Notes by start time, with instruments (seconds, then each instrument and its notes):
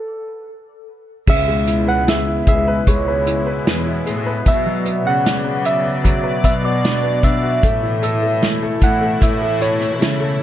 Already playing: soft synth lead A4
1.27 cello section C#2, analog synth pad B2 G#3 B3 E4, grand piano C#3, soft synth lead E5, kick, crash
1.48 grand piano G#3
1.67 grand piano E4, closed hi-hat
1.87 grand piano B4, soft synth lead F#5
2.07 grand piano G#4, soft synth lead E5, snare, closed hi-hat
2.27 grand piano E4
2.47 cello section C#2, grand piano G#4, soft synth lead E5, kick, closed hi-hat
2.68 grand piano B4
2.87 cello section C#2, grand piano G#3, soft synth lead C#5, kick, closed hi-hat
3.08 grand piano B4
3.27 grand piano E4, closed hi-hat
3.47 grand piano B4
3.67 cello section E2, grand piano G#4, snare, closed hi-hat
3.86 grand piano E4
4.06 cello section A2, grand piano G#4, closed hi-hat
4.26 grand piano B4
4.46 grand piano B2, cello section B2, analog synth pad F#3 D5, soft synth lead E5, kick, closed hi-hat
4.66 grand piano F#3
4.85 grand piano B3, closed hi-hat
5.05 cello section C#3, grand piano F#4, soft synth lead F#5
5.25 grand piano D5, snare, closed hi-hat
5.44 grand piano B3
5.65 soft synth lead E5, closed hi-hat
5.84 grand piano F#4
6.04 grand piano F#3, kick, closed hi-hat
6.24 grand piano B4
6.44 cello section B2, grand piano B3, soft synth lead E5, kick, closed hi-hat
6.63 grand piano F#4, soft synth lead D5
6.84 grand piano D4, snare, closed hi-hat
7.04 grand piano B3
7.23 grand piano D4, soft synth lead E5, kick, closed hi-hat
7.43 grand piano F#4
7.63 cello section A2, analog synth pad E3 A3 E4, grand piano A3, kick, closed hi-hat
7.83 grand piano E4
8.03 grand piano A4, soft synth lead E5, closed hi-hat
8.23 grand piano A3
8.42 grand piano E4, snare, closed hi-hat
8.63 grand piano A4
8.82 cello section A2, grand piano E4, soft synth lead F#5, kick, closed hi-hat
9.01 grand piano A3
9.21 cello section A2, grand piano E4, soft synth lead E5, kick, closed hi-hat
9.41 grand piano A4
9.61 grand piano E4, soft synth lead C#5, closed hi-hat
9.81 grand piano A3, closed hi-hat
10.01 cello section C#3, grand piano E4, snare, closed hi-hat
10.20 grand piano A4